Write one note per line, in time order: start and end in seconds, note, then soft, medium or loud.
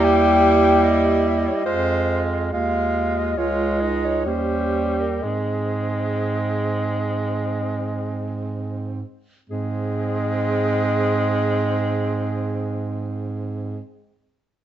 0.00 1.48 D#2 medium
0.00 1.61 G3 loud
0.00 1.60 E4 medium
0.04 0.85 G5 loud
0.83 1.30 D#5 loud
1.28 1.40 E5 medium
1.38 1.49 D#5 medium
1.47 1.57 C#5 medium
1.55 1.65 D#5 medium
1.65 2.50 F2 medium
1.65 2.50 G#3 medium
1.65 2.50 F4 medium
1.65 2.22 C5 loud
2.52 3.39 D#2 medium
2.52 3.36 G#3 medium
2.52 3.35 F4 medium
2.52 3.19 F5 loud
3.18 3.39 D#5 medium
3.37 4.28 C#2 medium
3.37 4.25 G#3 medium
3.37 3.80 F4 medium
3.37 3.83 C#5 loud
3.81 4.25 D#4 medium
3.81 4.07 D#5 medium
4.05 4.30 C#5 medium
4.26 5.22 D#2 medium
4.26 5.24 G3 medium
4.26 5.06 C#4 medium
4.26 5.02 C5 medium
5.00 5.24 A#4 medium
5.23 9.03 G#2 medium
5.23 9.07 G#3 medium
5.23 9.03 C4 medium
5.23 8.36 G#4 medium
9.49 13.80 G#2 medium
9.49 13.80 G#3 medium
9.49 13.80 C4 medium
9.49 13.81 G#4 loud